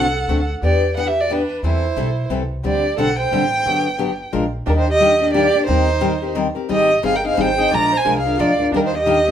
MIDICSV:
0, 0, Header, 1, 5, 480
1, 0, Start_track
1, 0, Tempo, 337648
1, 877, Time_signature, 3, 2, 24, 8
1, 13237, End_track
2, 0, Start_track
2, 0, Title_t, "Violin"
2, 0, Program_c, 0, 40
2, 0, Note_on_c, 0, 78, 101
2, 712, Note_off_c, 0, 78, 0
2, 906, Note_on_c, 0, 74, 83
2, 1339, Note_off_c, 0, 74, 0
2, 1373, Note_on_c, 0, 78, 74
2, 1522, Note_on_c, 0, 76, 74
2, 1544, Note_off_c, 0, 78, 0
2, 1717, Note_on_c, 0, 74, 80
2, 1739, Note_off_c, 0, 76, 0
2, 1885, Note_on_c, 0, 71, 81
2, 1906, Note_off_c, 0, 74, 0
2, 2341, Note_off_c, 0, 71, 0
2, 2353, Note_on_c, 0, 72, 71
2, 3238, Note_off_c, 0, 72, 0
2, 3794, Note_on_c, 0, 74, 78
2, 4223, Note_off_c, 0, 74, 0
2, 4265, Note_on_c, 0, 78, 85
2, 4519, Note_off_c, 0, 78, 0
2, 4535, Note_on_c, 0, 79, 97
2, 6105, Note_off_c, 0, 79, 0
2, 6667, Note_on_c, 0, 70, 76
2, 6732, Note_off_c, 0, 70, 0
2, 6806, Note_on_c, 0, 72, 81
2, 6950, Note_off_c, 0, 72, 0
2, 6981, Note_on_c, 0, 75, 97
2, 7565, Note_off_c, 0, 75, 0
2, 7584, Note_on_c, 0, 74, 100
2, 8036, Note_off_c, 0, 74, 0
2, 8056, Note_on_c, 0, 72, 91
2, 8970, Note_off_c, 0, 72, 0
2, 9545, Note_on_c, 0, 75, 93
2, 9979, Note_off_c, 0, 75, 0
2, 10037, Note_on_c, 0, 77, 89
2, 10175, Note_on_c, 0, 79, 82
2, 10196, Note_off_c, 0, 77, 0
2, 10326, Note_off_c, 0, 79, 0
2, 10342, Note_on_c, 0, 77, 87
2, 10528, Note_on_c, 0, 79, 99
2, 10549, Note_off_c, 0, 77, 0
2, 11009, Note_on_c, 0, 82, 108
2, 11030, Note_off_c, 0, 79, 0
2, 11332, Note_on_c, 0, 80, 96
2, 11353, Note_off_c, 0, 82, 0
2, 11626, Note_off_c, 0, 80, 0
2, 11652, Note_on_c, 0, 77, 76
2, 11947, Note_on_c, 0, 74, 89
2, 11969, Note_off_c, 0, 77, 0
2, 12317, Note_off_c, 0, 74, 0
2, 12453, Note_on_c, 0, 70, 85
2, 12513, Note_off_c, 0, 70, 0
2, 12607, Note_on_c, 0, 72, 80
2, 12734, Note_off_c, 0, 72, 0
2, 12763, Note_on_c, 0, 75, 97
2, 13237, Note_off_c, 0, 75, 0
2, 13237, End_track
3, 0, Start_track
3, 0, Title_t, "Fiddle"
3, 0, Program_c, 1, 110
3, 0, Note_on_c, 1, 69, 73
3, 693, Note_off_c, 1, 69, 0
3, 880, Note_on_c, 1, 67, 66
3, 1325, Note_off_c, 1, 67, 0
3, 1369, Note_on_c, 1, 71, 70
3, 1535, Note_on_c, 1, 67, 56
3, 1556, Note_off_c, 1, 71, 0
3, 1717, Note_on_c, 1, 66, 56
3, 1738, Note_off_c, 1, 67, 0
3, 1880, Note_on_c, 1, 62, 58
3, 1902, Note_off_c, 1, 66, 0
3, 2338, Note_off_c, 1, 62, 0
3, 2351, Note_on_c, 1, 64, 57
3, 3237, Note_off_c, 1, 64, 0
3, 3754, Note_on_c, 1, 67, 65
3, 4201, Note_off_c, 1, 67, 0
3, 4212, Note_on_c, 1, 69, 75
3, 4490, Note_off_c, 1, 69, 0
3, 4507, Note_on_c, 1, 72, 69
3, 5140, Note_off_c, 1, 72, 0
3, 6628, Note_on_c, 1, 62, 77
3, 6702, Note_off_c, 1, 62, 0
3, 6772, Note_on_c, 1, 63, 67
3, 6932, Note_off_c, 1, 63, 0
3, 6938, Note_on_c, 1, 67, 74
3, 7542, Note_off_c, 1, 67, 0
3, 7565, Note_on_c, 1, 67, 78
3, 8026, Note_off_c, 1, 67, 0
3, 8050, Note_on_c, 1, 63, 70
3, 8967, Note_off_c, 1, 63, 0
3, 9531, Note_on_c, 1, 67, 78
3, 9972, Note_off_c, 1, 67, 0
3, 9999, Note_on_c, 1, 68, 74
3, 10151, Note_on_c, 1, 70, 61
3, 10173, Note_off_c, 1, 68, 0
3, 10315, Note_off_c, 1, 70, 0
3, 10324, Note_on_c, 1, 68, 74
3, 10434, Note_on_c, 1, 72, 77
3, 10456, Note_off_c, 1, 68, 0
3, 10958, Note_on_c, 1, 74, 84
3, 10980, Note_off_c, 1, 72, 0
3, 11268, Note_on_c, 1, 72, 73
3, 11290, Note_off_c, 1, 74, 0
3, 11594, Note_off_c, 1, 72, 0
3, 11605, Note_on_c, 1, 68, 65
3, 11906, Note_on_c, 1, 65, 73
3, 11928, Note_off_c, 1, 68, 0
3, 12297, Note_off_c, 1, 65, 0
3, 12394, Note_on_c, 1, 62, 67
3, 12467, Note_off_c, 1, 62, 0
3, 12541, Note_on_c, 1, 63, 60
3, 12698, Note_off_c, 1, 63, 0
3, 12728, Note_on_c, 1, 67, 76
3, 13237, Note_off_c, 1, 67, 0
3, 13237, End_track
4, 0, Start_track
4, 0, Title_t, "Steel-string acoustic guitar"
4, 0, Program_c, 2, 25
4, 409, Note_on_c, 2, 57, 69
4, 414, Note_on_c, 2, 50, 71
4, 415, Note_on_c, 2, 60, 71
4, 422, Note_on_c, 2, 66, 79
4, 428, Note_on_c, 2, 69, 71
4, 558, Note_off_c, 2, 57, 0
4, 560, Note_off_c, 2, 50, 0
4, 561, Note_off_c, 2, 60, 0
4, 564, Note_off_c, 2, 66, 0
4, 568, Note_off_c, 2, 69, 0
4, 896, Note_on_c, 2, 59, 61
4, 900, Note_on_c, 2, 52, 49
4, 909, Note_on_c, 2, 62, 54
4, 917, Note_on_c, 2, 67, 72
4, 1177, Note_off_c, 2, 59, 0
4, 1179, Note_off_c, 2, 52, 0
4, 1183, Note_off_c, 2, 62, 0
4, 1187, Note_off_c, 2, 67, 0
4, 1378, Note_on_c, 2, 52, 71
4, 1380, Note_on_c, 2, 59, 75
4, 1385, Note_on_c, 2, 67, 76
4, 1386, Note_on_c, 2, 62, 75
4, 1522, Note_off_c, 2, 52, 0
4, 1523, Note_off_c, 2, 59, 0
4, 1525, Note_off_c, 2, 67, 0
4, 1526, Note_off_c, 2, 62, 0
4, 1843, Note_on_c, 2, 52, 70
4, 1852, Note_on_c, 2, 59, 71
4, 1856, Note_on_c, 2, 62, 77
4, 1858, Note_on_c, 2, 67, 78
4, 1994, Note_off_c, 2, 52, 0
4, 1999, Note_off_c, 2, 59, 0
4, 2001, Note_off_c, 2, 62, 0
4, 2002, Note_off_c, 2, 67, 0
4, 2328, Note_on_c, 2, 52, 63
4, 2331, Note_on_c, 2, 55, 62
4, 2336, Note_on_c, 2, 60, 62
4, 2338, Note_on_c, 2, 69, 63
4, 2344, Note_on_c, 2, 64, 60
4, 2612, Note_off_c, 2, 52, 0
4, 2614, Note_off_c, 2, 55, 0
4, 2616, Note_off_c, 2, 60, 0
4, 2617, Note_off_c, 2, 69, 0
4, 2620, Note_off_c, 2, 64, 0
4, 2790, Note_on_c, 2, 52, 74
4, 2794, Note_on_c, 2, 55, 79
4, 2806, Note_on_c, 2, 64, 76
4, 2807, Note_on_c, 2, 60, 76
4, 2807, Note_on_c, 2, 69, 83
4, 2948, Note_off_c, 2, 52, 0
4, 2950, Note_off_c, 2, 55, 0
4, 2956, Note_off_c, 2, 60, 0
4, 2956, Note_off_c, 2, 64, 0
4, 2956, Note_off_c, 2, 69, 0
4, 3270, Note_on_c, 2, 52, 76
4, 3273, Note_on_c, 2, 55, 70
4, 3275, Note_on_c, 2, 64, 75
4, 3280, Note_on_c, 2, 60, 82
4, 3286, Note_on_c, 2, 69, 79
4, 3427, Note_off_c, 2, 52, 0
4, 3429, Note_off_c, 2, 55, 0
4, 3430, Note_off_c, 2, 64, 0
4, 3432, Note_off_c, 2, 60, 0
4, 3435, Note_off_c, 2, 69, 0
4, 3744, Note_on_c, 2, 50, 57
4, 3751, Note_on_c, 2, 55, 64
4, 3756, Note_on_c, 2, 62, 57
4, 3760, Note_on_c, 2, 60, 63
4, 3763, Note_on_c, 2, 67, 67
4, 4040, Note_off_c, 2, 50, 0
4, 4044, Note_off_c, 2, 55, 0
4, 4046, Note_off_c, 2, 62, 0
4, 4048, Note_off_c, 2, 60, 0
4, 4050, Note_off_c, 2, 67, 0
4, 4237, Note_on_c, 2, 50, 87
4, 4242, Note_on_c, 2, 55, 74
4, 4247, Note_on_c, 2, 60, 83
4, 4249, Note_on_c, 2, 62, 88
4, 4260, Note_on_c, 2, 67, 79
4, 4391, Note_off_c, 2, 50, 0
4, 4393, Note_off_c, 2, 55, 0
4, 4396, Note_off_c, 2, 60, 0
4, 4397, Note_off_c, 2, 62, 0
4, 4402, Note_off_c, 2, 67, 0
4, 4724, Note_on_c, 2, 55, 77
4, 4725, Note_on_c, 2, 50, 86
4, 4729, Note_on_c, 2, 67, 76
4, 4731, Note_on_c, 2, 60, 81
4, 4736, Note_on_c, 2, 62, 85
4, 4874, Note_off_c, 2, 55, 0
4, 4875, Note_off_c, 2, 50, 0
4, 4877, Note_off_c, 2, 67, 0
4, 4878, Note_off_c, 2, 60, 0
4, 4880, Note_off_c, 2, 62, 0
4, 5196, Note_on_c, 2, 50, 56
4, 5203, Note_on_c, 2, 59, 61
4, 5205, Note_on_c, 2, 54, 59
4, 5212, Note_on_c, 2, 62, 68
4, 5219, Note_on_c, 2, 67, 62
4, 5486, Note_off_c, 2, 50, 0
4, 5489, Note_off_c, 2, 59, 0
4, 5490, Note_off_c, 2, 54, 0
4, 5494, Note_off_c, 2, 62, 0
4, 5497, Note_off_c, 2, 67, 0
4, 5661, Note_on_c, 2, 50, 73
4, 5665, Note_on_c, 2, 54, 72
4, 5669, Note_on_c, 2, 62, 86
4, 5672, Note_on_c, 2, 59, 80
4, 5674, Note_on_c, 2, 67, 82
4, 5823, Note_off_c, 2, 50, 0
4, 5825, Note_off_c, 2, 54, 0
4, 5827, Note_off_c, 2, 62, 0
4, 5828, Note_off_c, 2, 59, 0
4, 5829, Note_off_c, 2, 67, 0
4, 6148, Note_on_c, 2, 62, 66
4, 6152, Note_on_c, 2, 53, 75
4, 6153, Note_on_c, 2, 56, 72
4, 6154, Note_on_c, 2, 70, 75
4, 6156, Note_on_c, 2, 65, 79
4, 6306, Note_off_c, 2, 62, 0
4, 6308, Note_off_c, 2, 53, 0
4, 6309, Note_off_c, 2, 56, 0
4, 6309, Note_off_c, 2, 70, 0
4, 6310, Note_off_c, 2, 65, 0
4, 6624, Note_on_c, 2, 51, 56
4, 6631, Note_on_c, 2, 62, 60
4, 6632, Note_on_c, 2, 58, 61
4, 6638, Note_on_c, 2, 55, 62
4, 6643, Note_on_c, 2, 67, 71
4, 6920, Note_off_c, 2, 51, 0
4, 6924, Note_off_c, 2, 58, 0
4, 6924, Note_off_c, 2, 62, 0
4, 6927, Note_off_c, 2, 55, 0
4, 6930, Note_off_c, 2, 67, 0
4, 7110, Note_on_c, 2, 51, 85
4, 7110, Note_on_c, 2, 55, 78
4, 7119, Note_on_c, 2, 58, 81
4, 7119, Note_on_c, 2, 62, 84
4, 7126, Note_on_c, 2, 67, 91
4, 7267, Note_off_c, 2, 51, 0
4, 7267, Note_off_c, 2, 55, 0
4, 7272, Note_off_c, 2, 58, 0
4, 7272, Note_off_c, 2, 62, 0
4, 7275, Note_off_c, 2, 67, 0
4, 7399, Note_on_c, 2, 67, 54
4, 7404, Note_on_c, 2, 62, 52
4, 7424, Note_on_c, 2, 58, 45
4, 7580, Note_off_c, 2, 58, 0
4, 7582, Note_off_c, 2, 62, 0
4, 7586, Note_off_c, 2, 67, 0
4, 7593, Note_on_c, 2, 51, 77
4, 7593, Note_on_c, 2, 55, 79
4, 7597, Note_on_c, 2, 58, 77
4, 7599, Note_on_c, 2, 62, 82
4, 7605, Note_on_c, 2, 67, 86
4, 7749, Note_off_c, 2, 51, 0
4, 7749, Note_off_c, 2, 55, 0
4, 7751, Note_off_c, 2, 58, 0
4, 7752, Note_off_c, 2, 62, 0
4, 7755, Note_off_c, 2, 67, 0
4, 7876, Note_on_c, 2, 67, 53
4, 7890, Note_on_c, 2, 62, 45
4, 7895, Note_on_c, 2, 58, 37
4, 8053, Note_off_c, 2, 67, 0
4, 8064, Note_on_c, 2, 51, 65
4, 8065, Note_off_c, 2, 62, 0
4, 8065, Note_on_c, 2, 55, 66
4, 8070, Note_on_c, 2, 67, 75
4, 8071, Note_off_c, 2, 58, 0
4, 8077, Note_on_c, 2, 60, 66
4, 8080, Note_on_c, 2, 70, 67
4, 8361, Note_off_c, 2, 51, 0
4, 8361, Note_off_c, 2, 55, 0
4, 8364, Note_off_c, 2, 67, 0
4, 8367, Note_off_c, 2, 60, 0
4, 8368, Note_off_c, 2, 70, 0
4, 8543, Note_on_c, 2, 60, 91
4, 8544, Note_on_c, 2, 55, 84
4, 8544, Note_on_c, 2, 67, 78
4, 8545, Note_on_c, 2, 51, 73
4, 8554, Note_on_c, 2, 70, 88
4, 8704, Note_off_c, 2, 60, 0
4, 8705, Note_off_c, 2, 51, 0
4, 8705, Note_off_c, 2, 55, 0
4, 8705, Note_off_c, 2, 67, 0
4, 8710, Note_off_c, 2, 70, 0
4, 8840, Note_on_c, 2, 70, 47
4, 8846, Note_on_c, 2, 67, 44
4, 8864, Note_on_c, 2, 60, 41
4, 9015, Note_off_c, 2, 60, 0
4, 9019, Note_off_c, 2, 67, 0
4, 9020, Note_off_c, 2, 70, 0
4, 9026, Note_on_c, 2, 51, 81
4, 9032, Note_on_c, 2, 60, 82
4, 9033, Note_on_c, 2, 55, 82
4, 9036, Note_on_c, 2, 67, 75
4, 9037, Note_on_c, 2, 70, 91
4, 9186, Note_off_c, 2, 51, 0
4, 9189, Note_off_c, 2, 55, 0
4, 9189, Note_off_c, 2, 60, 0
4, 9191, Note_off_c, 2, 67, 0
4, 9191, Note_off_c, 2, 70, 0
4, 9311, Note_on_c, 2, 70, 50
4, 9322, Note_on_c, 2, 67, 50
4, 9331, Note_on_c, 2, 60, 42
4, 9496, Note_off_c, 2, 60, 0
4, 9503, Note_off_c, 2, 70, 0
4, 9505, Note_on_c, 2, 51, 64
4, 9508, Note_off_c, 2, 67, 0
4, 9510, Note_on_c, 2, 55, 71
4, 9513, Note_on_c, 2, 60, 70
4, 9516, Note_on_c, 2, 63, 77
4, 9525, Note_on_c, 2, 68, 73
4, 9801, Note_off_c, 2, 51, 0
4, 9804, Note_off_c, 2, 55, 0
4, 9805, Note_off_c, 2, 60, 0
4, 9807, Note_off_c, 2, 63, 0
4, 9811, Note_off_c, 2, 68, 0
4, 9991, Note_on_c, 2, 51, 74
4, 9994, Note_on_c, 2, 55, 81
4, 9997, Note_on_c, 2, 60, 81
4, 9999, Note_on_c, 2, 63, 91
4, 10002, Note_on_c, 2, 68, 86
4, 10149, Note_off_c, 2, 51, 0
4, 10150, Note_off_c, 2, 55, 0
4, 10152, Note_off_c, 2, 60, 0
4, 10153, Note_off_c, 2, 63, 0
4, 10154, Note_off_c, 2, 68, 0
4, 10288, Note_on_c, 2, 68, 51
4, 10301, Note_on_c, 2, 63, 47
4, 10308, Note_on_c, 2, 60, 41
4, 10463, Note_off_c, 2, 63, 0
4, 10466, Note_off_c, 2, 60, 0
4, 10472, Note_off_c, 2, 68, 0
4, 10475, Note_on_c, 2, 51, 90
4, 10479, Note_on_c, 2, 55, 78
4, 10480, Note_on_c, 2, 63, 92
4, 10483, Note_on_c, 2, 60, 88
4, 10489, Note_on_c, 2, 68, 80
4, 10631, Note_off_c, 2, 51, 0
4, 10633, Note_off_c, 2, 55, 0
4, 10633, Note_off_c, 2, 63, 0
4, 10635, Note_off_c, 2, 60, 0
4, 10638, Note_off_c, 2, 68, 0
4, 10772, Note_on_c, 2, 68, 59
4, 10786, Note_on_c, 2, 63, 47
4, 10792, Note_on_c, 2, 60, 47
4, 10954, Note_off_c, 2, 68, 0
4, 10961, Note_off_c, 2, 63, 0
4, 10964, Note_off_c, 2, 60, 0
4, 10976, Note_on_c, 2, 53, 67
4, 10981, Note_on_c, 2, 56, 68
4, 10989, Note_on_c, 2, 62, 69
4, 10994, Note_on_c, 2, 65, 72
4, 10995, Note_on_c, 2, 70, 66
4, 11257, Note_off_c, 2, 53, 0
4, 11260, Note_off_c, 2, 56, 0
4, 11264, Note_off_c, 2, 62, 0
4, 11266, Note_off_c, 2, 65, 0
4, 11267, Note_off_c, 2, 70, 0
4, 11439, Note_on_c, 2, 53, 86
4, 11444, Note_on_c, 2, 62, 77
4, 11447, Note_on_c, 2, 56, 74
4, 11452, Note_on_c, 2, 65, 73
4, 11454, Note_on_c, 2, 70, 77
4, 11593, Note_off_c, 2, 53, 0
4, 11596, Note_off_c, 2, 62, 0
4, 11597, Note_off_c, 2, 56, 0
4, 11600, Note_off_c, 2, 65, 0
4, 11601, Note_off_c, 2, 70, 0
4, 11738, Note_on_c, 2, 70, 53
4, 11748, Note_on_c, 2, 65, 45
4, 11756, Note_on_c, 2, 62, 42
4, 11917, Note_off_c, 2, 62, 0
4, 11918, Note_off_c, 2, 70, 0
4, 11923, Note_off_c, 2, 65, 0
4, 11928, Note_on_c, 2, 53, 78
4, 11931, Note_on_c, 2, 56, 75
4, 11934, Note_on_c, 2, 62, 94
4, 11936, Note_on_c, 2, 70, 88
4, 11943, Note_on_c, 2, 65, 89
4, 12078, Note_off_c, 2, 53, 0
4, 12079, Note_off_c, 2, 56, 0
4, 12081, Note_off_c, 2, 62, 0
4, 12082, Note_off_c, 2, 70, 0
4, 12085, Note_off_c, 2, 65, 0
4, 12210, Note_on_c, 2, 70, 51
4, 12225, Note_on_c, 2, 65, 50
4, 12233, Note_on_c, 2, 62, 47
4, 12393, Note_off_c, 2, 70, 0
4, 12401, Note_off_c, 2, 65, 0
4, 12405, Note_off_c, 2, 62, 0
4, 12418, Note_on_c, 2, 51, 58
4, 12424, Note_on_c, 2, 62, 65
4, 12428, Note_on_c, 2, 55, 64
4, 12428, Note_on_c, 2, 58, 68
4, 12434, Note_on_c, 2, 67, 74
4, 12699, Note_off_c, 2, 51, 0
4, 12702, Note_off_c, 2, 62, 0
4, 12704, Note_off_c, 2, 55, 0
4, 12704, Note_off_c, 2, 58, 0
4, 12707, Note_off_c, 2, 67, 0
4, 12878, Note_on_c, 2, 51, 83
4, 12889, Note_on_c, 2, 55, 79
4, 12891, Note_on_c, 2, 58, 88
4, 12893, Note_on_c, 2, 62, 85
4, 12896, Note_on_c, 2, 67, 89
4, 13033, Note_off_c, 2, 51, 0
4, 13039, Note_off_c, 2, 55, 0
4, 13040, Note_off_c, 2, 58, 0
4, 13040, Note_off_c, 2, 62, 0
4, 13042, Note_off_c, 2, 67, 0
4, 13157, Note_on_c, 2, 67, 52
4, 13174, Note_on_c, 2, 62, 44
4, 13185, Note_on_c, 2, 58, 46
4, 13237, Note_off_c, 2, 58, 0
4, 13237, Note_off_c, 2, 62, 0
4, 13237, Note_off_c, 2, 67, 0
4, 13237, End_track
5, 0, Start_track
5, 0, Title_t, "Upright bass"
5, 0, Program_c, 3, 32
5, 0, Note_on_c, 3, 36, 60
5, 325, Note_off_c, 3, 36, 0
5, 398, Note_on_c, 3, 38, 75
5, 806, Note_off_c, 3, 38, 0
5, 885, Note_on_c, 3, 40, 74
5, 2033, Note_off_c, 3, 40, 0
5, 2317, Note_on_c, 3, 40, 77
5, 2701, Note_off_c, 3, 40, 0
5, 2794, Note_on_c, 3, 35, 73
5, 3203, Note_off_c, 3, 35, 0
5, 3269, Note_on_c, 3, 36, 75
5, 3680, Note_off_c, 3, 36, 0
5, 3761, Note_on_c, 3, 38, 76
5, 4143, Note_off_c, 3, 38, 0
5, 4230, Note_on_c, 3, 35, 71
5, 4640, Note_off_c, 3, 35, 0
5, 4712, Note_on_c, 3, 33, 78
5, 5121, Note_off_c, 3, 33, 0
5, 5198, Note_on_c, 3, 31, 78
5, 5965, Note_off_c, 3, 31, 0
5, 6165, Note_on_c, 3, 34, 73
5, 6546, Note_off_c, 3, 34, 0
5, 6638, Note_on_c, 3, 39, 85
5, 7790, Note_off_c, 3, 39, 0
5, 8086, Note_on_c, 3, 39, 80
5, 9235, Note_off_c, 3, 39, 0
5, 9519, Note_on_c, 3, 32, 78
5, 9903, Note_off_c, 3, 32, 0
5, 10005, Note_on_c, 3, 31, 75
5, 10410, Note_off_c, 3, 31, 0
5, 10490, Note_on_c, 3, 32, 83
5, 10893, Note_off_c, 3, 32, 0
5, 10971, Note_on_c, 3, 34, 80
5, 11351, Note_off_c, 3, 34, 0
5, 11453, Note_on_c, 3, 36, 70
5, 11855, Note_off_c, 3, 36, 0
5, 11927, Note_on_c, 3, 38, 82
5, 12332, Note_off_c, 3, 38, 0
5, 12398, Note_on_c, 3, 39, 77
5, 13237, Note_off_c, 3, 39, 0
5, 13237, End_track
0, 0, End_of_file